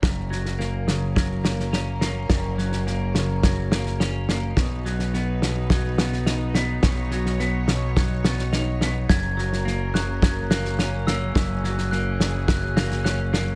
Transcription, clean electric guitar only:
X:1
M:4/4
L:1/8
Q:1/4=106
K:F#mix
V:1 name="Clean electric guitar" clef=bass
F,, F, A, C, F, A, C A, | F,, F, A, C, F, A, C A, | B,, F, B, B,, F, B, D B, | B,, F, B, B,, F, B, D B, |
F,, F, A, C, F, A, C A, | F,, F, A, C, F, A, C A, |]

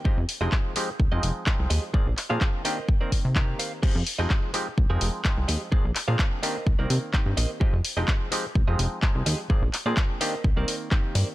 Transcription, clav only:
X:1
M:4/4
L:1/16
Q:1/4=127
K:Fdor
V:1 name="Clav"
[F,A,CEG] z2 [F,A,CEg]3 [F,A,CEG] z2 [F,A,CE]3 [F,A,CEg]4 | [F,B,CDA] z2 [F,B,CDA]3 [E,B,CDG] z2 [E,B,CB]3 [E,B,CG]4 | [F,A,CEG] z2 [F,A,CEg]3 [F,A,CEG] z2 [F,A,CE]3 [F,A,CEg]4 | [F,B,CDA] z2 [F,B,CDA]3 [E,B,CDG] z2 [E,B,CB]3 [E,B,CG]4 |
[F,A,CEG] z2 [F,A,CEg]3 [F,A,CEG] z2 [F,A,CE]3 [F,A,CEg]4 | [F,B,CDA] z2 [F,B,CDA]3 [E,B,CDG] z2 [E,B,CB]3 [E,B,CG]4 |]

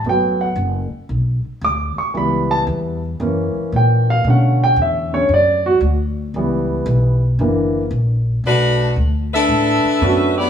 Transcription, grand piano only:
X:1
M:4/4
L:1/8
Q:"Swing" 1/4=114
K:Bm
V:1 name="Grand piano"
g f z4 d' c' | b a z4 g ^e | f g e c d F z2 | z8 |
z6 [A,B,CDF]2 |]
V:2 name="Grand piano"
[F,A,B,] z6 z | [E,G,B,]3 z [E,^A,C]4 | [D,A,C]3 [D,A,C] z4 | [E,G,B,]3 z [D,E,^A,] z3 |
z8 |]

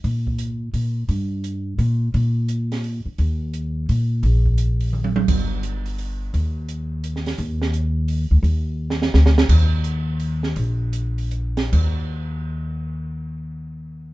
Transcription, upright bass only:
X:1
M:3/4
L:1/8
Q:"Swing" 1/4=171
K:Eb
V:1 name="Upright bass" clef=bass
B,,4 B,,2 | G,,4 B,,2 | B,,4- B,, z | E,,4 B,,2 |
B,,,6 | G,,,6 | E,,6 | E,,4- E,, D,, |
E,,4 D,,2 | E,,6 | B,,,6 | E,,6- |
E,,6 |]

